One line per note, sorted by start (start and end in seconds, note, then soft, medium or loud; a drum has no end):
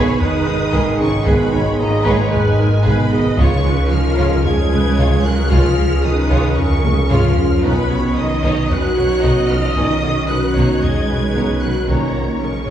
0.00 3.40 G#1 loud
0.00 0.20 B2 loud
0.00 3.35 D#3 medium
0.00 3.35 G#3 medium
0.00 0.21 B3 medium
0.00 3.35 D#4 medium
0.00 0.19 G#4 loud
0.00 3.35 G#4 medium
0.00 0.19 B4 loud
0.00 0.20 C#5 medium
0.00 3.35 D#5 medium
0.00 0.20 B5 loud
0.20 0.98 D#3 loud
0.20 0.99 D#4 loud
0.20 0.73 B4 medium
0.20 1.00 D#6 loud
0.20 taiko low medium
0.47 0.55 G#1 medium
0.47 0.58 G#1 medium
0.47 0.63 D#4 medium
0.47 0.55 D#4 medium
0.47 0.55 G#4 medium
0.47 taiko rim soft
0.73 0.81 G#1 loud
0.73 0.84 G#1 medium
0.73 0.89 G#3 loud
0.73 0.98 G#4 medium
0.73 1.00 A#4 medium
0.73 0.98 B4 medium
0.73 taiko medium
1.00 1.08 G#1 medium
1.00 1.11 G#1 medium
1.00 1.26 C#3 medium
1.00 1.08 B3 medium
1.00 1.27 C#4 medium
1.00 1.08 D#4 medium
1.00 1.16 G#4 medium
1.00 1.26 G#4 medium
1.00 1.26 C#6 loud
1.26 1.35 G#1 loud
1.26 1.37 G#1 medium
1.26 1.79 B2 medium
1.26 1.42 G#3 loud
1.26 1.79 B3 loud
1.26 1.51 G#4 medium
1.26 1.51 B4 medium
1.26 1.53 B4 medium
1.26 1.80 B5 loud
1.26 taiko loud
1.53 1.61 G#1 medium
1.53 1.64 G#1 medium
1.53 1.61 B3 medium
1.53 1.69 D#4 medium
1.53 1.62 D#4 medium
1.53 1.79 C#5 medium
1.80 1.88 G#1 medium
1.80 1.91 G#1 medium
1.80 2.32 A#2 medium
1.80 2.33 A#3 medium
1.80 1.96 B3 medium
1.80 1.88 D#4 medium
1.80 1.88 G#4 medium
1.80 2.06 D#5 medium
1.80 2.33 A#5 medium
2.06 2.17 G#1 loud
2.06 2.15 G#1 medium
2.06 2.22 G#3 loud
2.06 2.31 G#4 medium
2.06 2.31 B4 loud
2.06 2.33 C#5 loud
2.06 taiko medium
2.32 2.86 G#2 medium
2.32 2.86 G#3 loud
2.32 2.59 B4 medium
2.32 2.86 G#5 medium
2.32 taiko low medium
2.59 2.67 G#1 medium
2.59 2.70 G#1 medium
2.59 2.67 D#4 medium
2.59 2.75 D#4 medium
2.59 2.67 G#4 medium
2.59 2.86 A#4 medium
2.85 2.94 G#1 loud
2.85 2.97 G#1 medium
2.85 3.39 B2 medium
2.85 3.02 G#3 loud
2.85 3.39 B3 medium
2.85 3.11 G#4 medium
2.85 3.10 B4 medium
2.85 3.12 B4 medium
2.85 3.39 B5 loud
2.85 taiko medium
3.12 3.21 G#1 medium
3.12 3.24 G#1 medium
3.12 3.20 B3 medium
3.12 3.20 D#4 medium
3.12 3.28 G#4 medium
3.12 3.38 D#5 medium
3.38 7.66 C#2 medium
3.38 3.47 C#2 loud
3.38 3.50 C#2 medium
3.38 3.91 C#3 medium
3.38 3.55 C#3 loud
3.38 7.64 F3 medium
3.38 7.47 F3 medium
3.38 7.47 C#4 medium
3.38 7.63 C#4 medium
3.38 3.93 C#4 medium
3.38 3.64 F4 medium
3.38 7.60 G#4 medium
3.38 3.66 C#5 medium
3.38 3.64 C#5 medium
3.38 7.63 C#5 medium
3.38 3.91 C#6 loud
3.38 taiko loud
3.65 3.74 C#2 medium
3.65 3.77 C#2 medium
3.65 3.73 G#3 medium
3.65 3.81 G#3 medium
3.65 3.73 F4 medium
3.65 3.92 B4 medium
3.92 4.01 C#2 medium
3.92 4.03 C#2 medium
3.92 4.45 F3 loud
3.92 4.08 F3 medium
3.92 4.00 C#4 medium
3.92 4.44 F4 loud
3.92 4.00 G#4 medium
3.92 4.45 A#4 medium
3.92 4.45 F6 loud
4.18 4.27 C#2 medium
4.18 4.30 C#2 medium
4.18 4.35 C#3 loud
4.18 4.43 F4 medium
4.18 4.43 C#5 medium
4.18 taiko medium
4.45 5.23 G#3 loud
4.45 4.72 G#4 medium
4.45 5.25 G#4 loud
4.45 5.23 G#6 loud
4.45 taiko low medium
4.72 4.80 C#2 medium
4.72 4.83 C#2 medium
4.72 4.88 G#3 medium
4.72 4.80 C#4 medium
4.72 4.80 G#4 medium
4.72 4.98 B4 medium
4.98 5.07 C#2 loud
4.98 5.10 C#2 loud
4.98 5.14 C#3 medium
4.98 5.23 F4 medium
4.98 5.25 C#5 medium
4.98 5.23 C#5 medium
4.98 taiko medium
5.24 5.33 C#2 medium
5.24 5.36 C#2 medium
5.24 5.51 F#3 medium
5.24 5.33 G#3 medium
5.24 5.41 C#4 medium
5.24 5.32 F4 medium
5.24 5.51 F#4 medium
5.24 5.51 A#4 medium
5.24 5.51 F#6 loud
5.51 5.60 C#2 loud
5.51 5.63 C#2 medium
5.51 5.68 C#3 loud
5.51 6.03 F3 loud
5.51 5.76 F4 medium
5.51 5.88 F4 loud
5.51 6.04 G#4 medium
5.51 5.76 C#5 medium
5.51 6.04 F6 loud
5.51 taiko loud
5.78 5.86 C#2 medium
5.78 5.89 C#2 medium
5.78 5.86 G#3 medium
5.78 5.94 G#3 medium
5.78 5.86 F4 medium
6.04 6.13 C#2 medium
6.04 6.16 C#2 medium
6.04 6.58 D#3 medium
6.04 6.21 F3 medium
6.04 6.12 C#4 medium
6.04 6.56 D#4 medium
6.04 6.13 G#4 medium
6.04 6.57 B4 medium
6.04 6.57 D#6 loud
6.31 6.39 C#2 medium
6.31 6.42 C#2 medium
6.31 6.47 C#3 loud
6.31 6.56 F4 medium
6.31 6.56 C#5 medium
6.31 taiko medium
6.57 7.10 C#3 medium
6.57 7.11 C#4 loud
6.57 7.11 A#4 medium
6.57 7.10 C#6 loud
6.57 taiko low medium
6.84 6.92 C#2 medium
6.84 6.96 C#2 medium
6.84 7.00 G#3 medium
6.84 6.93 C#4 medium
6.84 6.93 G#4 medium
6.84 taiko high medium
7.10 7.19 C#2 medium
7.10 7.22 C#2 medium
7.10 7.27 C#3 loud
7.10 7.63 F3 medium
7.10 7.36 F4 medium
7.10 7.63 F4 loud
7.10 7.37 G#4 medium
7.10 7.36 C#5 medium
7.10 7.63 F6 loud
7.10 taiko low-mid medium
7.37 7.46 C#2 medium
7.37 7.49 C#2 medium
7.37 7.46 G#3 medium
7.37 7.54 C#4 medium
7.37 7.45 F4 medium
7.37 7.63 A#4 medium
7.37 taiko low loud
7.64 11.90 B1 medium
7.64 7.75 B1 medium
7.64 7.73 B1 loud
7.64 8.17 B2 medium
7.64 12.70 D#3 medium
7.64 7.83 D#3 medium
7.64 8.16 B3 medium
7.64 7.80 B3 loud
7.64 7.83 C#4 medium
7.64 12.70 C#4 medium
7.64 7.88 D#4 medium
7.64 12.70 D#4 medium
7.64 7.90 B4 medium
7.64 7.88 C#5 medium
7.64 11.85 C#5 medium
7.64 8.16 B5 loud
7.64 taiko loud
7.90 7.99 B1 medium
7.90 8.02 B1 medium
7.90 7.99 B3 medium
7.90 8.07 F#4 medium
7.90 7.99 F#4 medium
7.90 8.17 C#5 medium
8.17 8.28 B1 medium
8.17 8.26 B1 medium
8.17 8.70 D#3 loud
8.17 8.26 C#4 medium
8.17 8.69 D#4 medium
8.17 8.33 D#4 medium
8.17 8.25 B4 medium
8.17 8.70 D#5 medium
8.17 8.70 D#6 loud
8.43 8.52 B1 medium
8.43 8.55 B1 loud
8.43 8.60 B3 loud
8.43 8.68 D#4 medium
8.43 8.68 C#5 loud
8.43 taiko medium
8.70 8.89 D#3 medium
8.70 9.49 F#3 medium
8.70 8.89 C#4 medium
8.70 9.48 F#4 loud
8.70 8.97 B4 medium
8.70 9.50 F#6 loud
8.70 taiko low medium
8.97 9.05 B1 medium
8.97 9.08 B1 medium
8.97 9.05 C#4 medium
8.97 9.13 F#4 medium
8.97 9.05 B4 medium
8.97 9.23 C#5 medium
9.23 9.32 B1 medium
9.23 9.34 B1 medium
9.23 9.39 B3 loud
9.23 9.48 D#4 medium
9.23 9.48 C#5 medium
9.23 10.29 D#5 loud
9.23 taiko medium
9.49 9.59 B1 medium
9.49 9.61 B1 medium
9.49 9.76 F3 medium
9.49 9.58 B3 medium
9.49 9.76 F4 medium
9.49 9.58 F#4 medium
9.49 9.66 B4 medium
9.49 9.76 F6 loud
9.75 9.85 B1 medium
9.75 9.88 B1 medium
9.75 9.94 D#3 medium
9.75 10.28 D#3 medium
9.75 9.93 B3 medium
9.75 9.95 C#4 medium
9.75 10.01 D#4 medium
9.75 10.29 D#4 medium
9.75 10.01 C#5 medium
9.75 10.29 D#6 loud
9.75 taiko medium
10.03 10.12 B1 medium
10.03 10.14 B1 medium
10.03 10.11 B3 medium
10.03 10.11 F#4 medium
10.03 10.19 F#4 medium
10.29 10.38 B1 medium
10.29 10.41 B1 medium
10.29 10.82 F#3 medium
10.29 10.38 C#4 medium
10.29 10.46 D#4 medium
10.29 10.81 F#4 medium
10.29 10.56 B4 medium
10.29 10.38 B4 medium
10.29 10.82 F#6 loud
10.56 10.67 B1 medium
10.56 10.64 B1 medium
10.56 10.72 B3 loud
10.56 10.81 D#4 medium
10.56 10.82 C#5 medium
10.56 10.81 C#5 medium
10.56 taiko medium
10.82 11.01 D#3 medium
10.82 11.62 G#3 medium
10.82 11.01 C#4 medium
10.82 11.62 G#4 medium
10.82 11.09 D#5 medium
10.82 11.62 G#6 loud
10.82 taiko low medium
11.09 11.20 B1 medium
11.09 11.18 B1 medium
11.09 11.17 C#4 medium
11.09 11.25 F#4 medium
11.09 11.87 B4 medium
11.09 11.17 B4 medium
11.35 11.46 B1 medium
11.35 11.44 B1 medium
11.35 11.51 B3 medium
11.35 11.60 D#4 medium
11.35 11.60 C#5 medium
11.35 taiko medium
11.62 11.70 B1 medium
11.62 11.73 B1 medium
11.62 11.88 F#3 medium
11.62 11.71 B3 medium
11.62 11.89 F#4 medium
11.62 11.71 F#4 medium
11.62 11.78 B4 medium
11.62 11.89 F#6 medium
11.88 12.70 A#1 medium
11.88 11.97 A#1 medium
11.88 11.99 A#1 medium
11.88 12.41 A#2 medium
11.88 12.07 D#3 medium
11.88 12.04 D#3 medium
11.88 12.40 A#3 medium
11.88 12.07 C#4 medium
11.88 12.13 D#4 medium
11.88 12.42 C#5 medium
11.88 12.13 C#5 medium
11.88 12.70 D#5 medium
11.88 12.41 A#5 medium
11.88 taiko medium
12.15 12.24 A#1 soft
12.15 12.26 A#1 medium
12.15 12.31 A#3 medium
12.15 12.24 A#3 medium
12.15 12.24 F#4 soft
12.41 12.52 A#1 soft
12.41 12.50 A#1 soft
12.41 12.70 C#3 medium
12.41 12.58 F#3 medium
12.41 12.70 C#4 medium
12.41 12.50 C#4 soft
12.41 12.68 A#4 medium
12.41 12.50 A#4 medium
12.41 12.70 C#6 medium